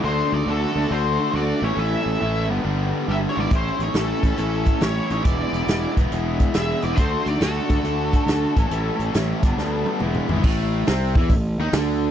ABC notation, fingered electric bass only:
X:1
M:4/4
L:1/8
Q:"Swing" 1/4=138
K:Amix
V:1 name="Fingered electric bass" clef=bass
D,, D,, D,, D,, D,,2 D,, A,,, | A,,, A,,, A,,, G,,, G,,,2 G,,, ^G,,, | A,,, A,,, A,,, A,,, A,,,2 A,,, A,,, | z E,,, E,,, E,,, E,,,2 E,,, E,,, |
D,, D,, D,, D,, D,,2 D,, A,,, | A,,, A,,, A,,, G,,, D,,2 E,,, ^G,,, | A,,,2 =C,, E,, A,,, ^D,, =D,,2 |]